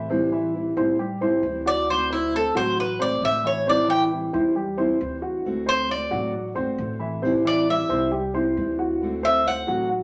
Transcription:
Already playing: upright bass A1, cuban tres C5
0.09 grand piano C3 C4 C5, nylon-string guitar E3 G3 C4 E4
0.32 grand piano E3 E4 E5
0.53 nylon-string guitar E3 G3 C4 E4
0.77 upright bass A2, nylon-string guitar G3 C4 E4, grand piano C4 C5 C6
0.99 grand piano G3 G4 G5, muted nylon-string guitar stroke
1.21 nylon-string guitar G3 C4 E4, grand piano C4 C5 C6
1.43 upright bass D2, nylon-string guitar E3 G3 C4 E4
1.66 grand piano F#4 F#5, cuban tres D5
1.88 nylon-string guitar D3 A3 C4 F#4, cuban tres C5
2.10 grand piano C4 C5 C6, cuban tres E4
2.33 nylon-string guitar D3 A3 C4 F#4, cuban tres A4
2.55 upright bass A1, grand piano F#3 F#4 F#5, nylon-string guitar A3 C4 F#4, cuban tres C5
2.78 cuban tres B4, muted nylon-string guitar stroke
2.99 nylon-string guitar A3 C4 F#4, grand piano C4 C5 C6, cuban tres D5
3.22 upright bass A1, nylon-string guitar D3 A3 C4 F#4, cuban tres E5
3.44 grand piano E3 E4 E5, cuban tres C#5
3.66 grand piano C3 C4 C5, nylon-string guitar E3 G3 C4 E4, cuban tres D5
3.88 grand piano E3 E4 E5, cuban tres G5
4.11 nylon-string guitar E3 G3 C4 E4
4.33 upright bass E2, nylon-string guitar G3 C4 E4, grand piano C4 C5 C6
4.55 grand piano G3 G4 G5, muted nylon-string guitar stroke
4.77 nylon-string guitar G3 C4 E4, grand piano C4 C5 C6
5.00 upright bass D2, nylon-string guitar E3 G3 C4 E4
5.22 grand piano F#4 F#5
5.45 nylon-string guitar D3 A3 C4 F#4
5.66 grand piano C4 C5 C6, cuban tres C5
5.89 nylon-string guitar D3 A3 C4 F#4, cuban tres D5
6.11 upright bass A1, grand piano F#3 F#4 F#5, nylon-string guitar A3 C4 F#4
6.34 muted nylon-string guitar stroke
6.55 upright bass G1, nylon-string guitar A3 C4 F#4, grand piano C4 C5 C6
6.78 upright bass A1, nylon-string guitar D3 A3 C4 F#4
6.99 grand piano E3 E4 E5
7.22 grand piano C3 C4 C5, nylon-string guitar E3 G3 C4 E4
7.45 grand piano E3 E4 E5, cuban tres D5
7.68 nylon-string guitar E3 G3 C4 E4, cuban tres E5
7.89 upright bass C2, nylon-string guitar G3 C4 E4, grand piano C4 C5 C6
8.11 grand piano G3 G4 G5, muted nylon-string guitar stroke
8.34 nylon-string guitar G3 C4 E4, grand piano C4 C5 C6
8.57 upright bass D2, nylon-string guitar E3 G3 C4 E4
8.79 grand piano F#4 F#5
9.02 nylon-string guitar D3 A3 C4 F#4
9.23 grand piano C4 C5 C6, cuban tres E5
9.45 nylon-string guitar D3 A3 C4 F#4, cuban tres F#5
9.67 upright bass A1, grand piano F#3 F#4 F#5, nylon-string guitar A3 C4 F#4
9.90 muted nylon-string guitar stroke

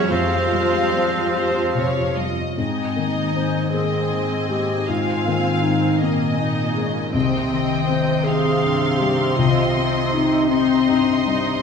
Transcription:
Already playing: double bass section E2, harp E3 G#3 E4 E5, cello section F#3, grand piano G#3 A#3 E4 G#4, oboe C#4, french horn section E4, viola section F#4, violin section E5 F#5
0.11 grand piano F2, double bass section F2, harp F3, cello section F3, oboe C4, viola section F4, french horn section G4 C5, violin section C5 F5
0.31 grand piano F4
0.53 grand piano G3, harp G3
0.73 grand piano G#3
0.94 grand piano G3, harp F4
1.14 grand piano F4
1.33 grand piano G4, violin section C5, harp C6
1.54 grand piano F4
1.75 grand piano C3, harp G4, violin section C#5
1.96 grand piano F4
2.17 grand piano G3, harp F4, violin section D#5
2.37 grand piano F4
2.56 grand piano G#2, cello section G#2, harp G#2, alto flute C4, viola section D#4, violin section D#5 G#5
2.96 harp D#3, grand piano A#3
3.35 harp G#3, grand piano C4, alto flute C5
3.72 grand piano A#3, harp A#3, viola section C4, alto flute G#4, violin section D#5
4.11 grand piano D#3, harp D#4
4.49 grand piano G#3, harp A#3, alto flute G4
4.89 grand piano G#2, harp G#2, viola section C4, alto flute F4, violin section F5
5.27 harp D#3, grand piano A#3
5.63 harp G#3, grand piano C4, alto flute D#4
6.01 cello section A#2, viola section A#3, grand piano A#3, harp A#3, alto flute C4, violin section D#5
6.39 grand piano D#3, viola section D#4, harp D#4
6.75 viola section C#3, grand piano G#3, harp A#3
7.13 grand piano C2, cello section C3, harp C3, alto flute C4, viola section C4, violin section D#5 G5
7.51 harp D#3, grand piano C4
7.86 grand piano C4, harp C4, alto flute C5
8.24 grand piano C4, viola section C4, harp D#4, alto flute G#4, violin section F5 C6
8.63 grand piano G2, harp G5
8.98 grand piano G3, harp D#4, alto flute G4
9.37 grand piano C2, harp C3, alto flute F4, violin section D#5
9.76 harp G3, grand piano C4
10.13 harp C4, grand piano C4, alto flute D#4
10.48 alto flute C4, grand piano C4, harp D#4, viola section D#4, violin section D#5 C6
10.86 grand piano G2, viola section D#4, harp G4
11.25 grand piano G3, viola section D#4, harp D#4

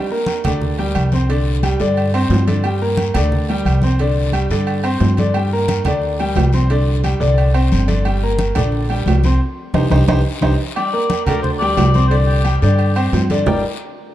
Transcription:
0.10 grand piano A#3 A#4 A#5, high conga
0.26 high conga, low agogo, short guiro
0.44 upright bass D2, grand piano D3 D4 D5, high conga, low conga, low agogo, short guiro
0.61 high conga, low conga, long guiro
0.78 grand piano G3 G4 G5, high conga, low agogo
0.95 upright bass C2, high conga, low agogo, short guiro
1.12 grand piano C4 C5 C6, high conga, short guiro
1.29 grand piano D3 D4 D5, high conga, low agogo, long guiro
1.47 high conga
1.63 grand piano G3 G4 G5, high conga, low agogo, short guiro
1.80 upright bass G2, grand piano D3 D4 D5, high conga, short guiro
1.96 high conga, low agogo, long guiro
2.14 grand piano C4 C5 C6, high conga, low agogo
2.29 upright bass G2, high conga, low timbale, short guiro
2.47 grand piano D3 D4 D5, high conga, low agogo, short guiro
2.64 grand piano G3 G4 G5, high conga, low agogo, long guiro
2.81 grand piano A#3 A#4 A#5, high conga
2.97 high conga, low agogo, short guiro
3.14 upright bass D2, grand piano D3 D4 D5, high conga, low conga, low agogo, short guiro
3.32 high conga, low conga, long guiro
3.49 grand piano G3 G4 G5, low agogo
3.65 upright bass C2, high conga, low agogo, short guiro
3.82 grand piano C4 C5 C6, high conga, short guiro
3.98 grand piano D3 D4 D5, high conga, low agogo, long guiro
4.16 high conga
4.32 grand piano G3 G4 G5, high conga, low agogo, short guiro
4.49 upright bass G2, grand piano D3 D4 D5, high conga, short guiro
4.66 high conga, low agogo, long guiro
4.84 grand piano C4 C5 C6, high conga, low agogo
5.00 upright bass G2, high conga, low timbale, short guiro
5.17 grand piano D3 D4 D5, high conga, low agogo, short guiro
5.34 grand piano G3 G4 G5, high conga, low agogo, long guiro
5.52 grand piano A#3 A#4 A#5, high conga
5.68 high conga, low agogo, short guiro
5.84 upright bass D2, grand piano D3 D4 D5, high conga, low conga, low agogo, short guiro
6.02 high conga, long guiro
6.19 grand piano G3 G4 G5, high conga, low agogo
6.36 upright bass C2, high conga, low timbale, low agogo, short guiro
6.53 grand piano C4 C5 C6, high conga, short guiro
6.70 grand piano D3 D4 D5, high conga, low agogo, long guiro
6.87 high conga
7.04 grand piano G3 G4 G5, high conga, low agogo, short guiro
7.20 upright bass C2, grand piano D3 D4 D5, high conga, short guiro
7.38 high conga, low agogo, long guiro
7.54 grand piano C4 C5 C6, high conga, low agogo
7.72 upright bass G1, high conga, short guiro
7.88 grand piano D3 D4 D5, high conga, low agogo, short guiro
8.05 grand piano G3 G4 G5, high conga, low agogo, long guiro
8.22 grand piano A#3 A#4 A#5, high conga
8.39 high conga, low agogo, short guiro
8.55 upright bass A#1, grand piano D3 D4 D5, high conga, low conga, low agogo, short guiro
8.72 high conga, long guiro
8.89 grand piano G3 G4 G5, high conga, low agogo
9.06 upright bass C2, high conga, low timbale, low agogo, short guiro
9.24 grand piano C4 C5 C6, high conga, short guiro
9.74 upright bass C2, grand piano D#4 G4 C5, high conga, high timbale, long guiro
9.90 upright bass C2, grand piano D#4 G4 C5, high conga, high timbale, long guiro
10.08 upright bass C2, grand piano D#4 G4 C5, high conga, high timbale, long guiro
10.41 upright bass C2, grand piano D#4 G4 C5, high conga, high timbale
10.76 grand piano G3 G4 G5, cor anglais D5, high conga, low agogo
10.93 grand piano A#3 A#4 A#5, high conga
11.10 high conga, low agogo, short guiro
11.25 upright bass D2, grand piano D3 D4 D5, cor anglais A#4, high conga, low conga, low agogo, short guiro
11.42 cor anglais C5, high conga, low conga, long guiro
11.59 grand piano G3 G4 G5, cor anglais D5, high conga, low agogo
11.77 upright bass C2, high conga, low timbale, low agogo, short guiro
11.94 grand piano C4 C5 C6, high conga, short guiro
12.08 grand piano D3 D4 D5, cor anglais C5, low agogo, long guiro
12.25 cor anglais G4, high conga
12.45 grand piano G3 G4 G5, high conga, low agogo, short guiro
12.61 upright bass G2, grand piano D3 D4 D5, cor anglais G4, high conga, short guiro
12.79 high conga, low agogo, long guiro
12.96 grand piano C4 C5 C6, high conga, low agogo
13.13 upright bass G2, high conga, low timbale, short guiro
13.30 grand piano D3 D4 D5, high conga, low agogo, short guiro
13.46 upright bass G1, grand piano G3 D4 G4 A#4 D5 G5, cor anglais G4, low conga, low timbale, long guiro

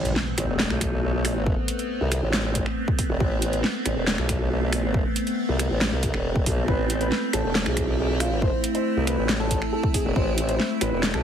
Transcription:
Already playing: wobble bass A1, ambient pad A3 B3 C4, impact
0.05 closed hi-hat
0.16 snare
0.38 wobble bass A1, finger snap, closed hi-hat
0.49 wobble bass E1
0.59 snare, clap
0.70 wobble bass B1, finger snap
0.81 finger snap, kick, closed hi-hat
1.25 finger snap, open hi-hat
1.46 kick
1.68 closed hi-hat
1.79 closed hi-hat
2.01 wobble bass C2
2.12 finger snap, closed hi-hat
2.23 wobble bass A1
2.33 finger snap, snare, clap
2.55 kick, closed hi-hat
2.66 finger snap
2.88 kick
2.99 kick, open hi-hat
3.10 wobble bass E1
3.20 wobble bass A1, kick
3.42 closed hi-hat
3.53 closed hi-hat
3.64 snare
3.86 wobble bass A1, finger snap, closed hi-hat
3.96 wobble bass E1
4.07 snare, clap
4.18 wobble bass B1, finger snap
4.29 finger snap, kick, closed hi-hat
4.73 finger snap, open hi-hat
4.94 kick
5.16 closed hi-hat
5.27 closed hi-hat
5.49 wobble bass C2
5.59 finger snap, closed hi-hat
5.70 wobble bass A1
5.81 finger snap, snare, clap
5.92 wobble bass C2
6.03 kick, closed hi-hat
6.14 wobble bass E1, finger snap
6.36 kick
6.46 wobble bass B1, kick, open hi-hat
6.68 wobble bass A1, ambient pad E4, grand piano B4, kick
6.90 closed hi-hat
7.01 grand piano B4, closed hi-hat
7.12 snare
7.33 wobble bass A1, grand piano A4, finger snap, closed hi-hat
7.44 wobble bass E1
7.55 snare, clap
7.66 wobble bass B1, grand piano G#4, finger snap
7.77 finger snap, kick, closed hi-hat
7.99 grand piano G#4
8.20 grand piano F4, finger snap, open hi-hat
8.42 grand piano C5, kick
8.64 closed hi-hat
8.75 grand piano C5, closed hi-hat
8.96 wobble bass C2
9.07 grand piano B4, finger snap, closed hi-hat
9.18 wobble bass A1
9.29 finger snap, snare, clap
9.40 grand piano A4
9.51 kick, closed hi-hat
9.62 finger snap
9.73 grand piano A4
9.83 kick
9.94 grand piano G#4, kick, open hi-hat
10.05 wobble bass E1
10.16 wobble bass A1, grand piano C5, kick
10.38 closed hi-hat
10.49 grand piano C5, closed hi-hat
10.59 snare
10.81 wobble bass A1, grand piano B4, finger snap, closed hi-hat
10.92 wobble bass E1
11.03 snare, clap
11.14 wobble bass B1, grand piano A4, finger snap

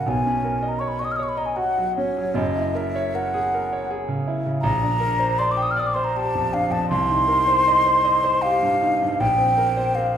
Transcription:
0.06 grand piano B1 B2, flute G#5
0.26 grand piano C#4
0.44 grand piano A#4
0.63 grand piano D#5
0.68 flute A#5
0.79 grand piano C#5, flute C#6
0.88 flute B5
0.99 grand piano D#5, flute C#6
1.05 flute D#6
1.12 flute F6
1.16 grand piano C#5, flute D#6
1.23 flute C#6
1.29 flute B5
1.37 grand piano D#5, flute A#5
1.46 flute G#5
1.56 grand piano F#4, flute F#5
1.78 grand piano F#3
1.97 grand piano C#4, flute C#5
2.17 grand piano F#3
2.34 grand piano F#1 F#2, flute D#5
2.56 grand piano E4
2.75 grand piano A#4, flute E5
2.96 grand piano C#5
3.14 grand piano A#4, flute F#5
3.34 grand piano G#4
3.54 grand piano A#4
3.73 grand piano C#5
3.91 grand piano G#4
4.08 grand piano C#3
4.28 grand piano E4
4.46 grand piano C#3
4.62 grand piano A#1, flute A#5
4.83 grand piano D4
5.00 grand piano A#4
5.20 grand piano C5
5.39 grand piano D5, flute C6
5.51 flute D6
5.57 grand piano G5
5.62 flute D#6
5.71 flute F6
5.77 grand piano D5, flute D#6
5.87 flute D6
5.94 grand piano C5, flute C6
6.04 flute A#5
6.16 grand piano G4, flute A5
6.35 grand piano F2
6.53 grand piano D4, flute F5
6.70 grand piano F2, flute A5
6.90 grand piano C2, flute C6
7.10 grand piano D#4
7.28 grand piano A#4
7.48 grand piano C5
7.68 grand piano D#5
7.86 grand piano C5
8.05 grand piano D#5
8.24 grand piano C5
8.42 grand piano G4, flute F5
8.63 grand piano G2
8.81 grand piano D#4
9.02 grand piano G2
9.20 grand piano A#1, flute G5
9.38 grand piano C4
9.58 grand piano A#4
9.77 grand piano C5
9.95 grand piano A#4, flute F5

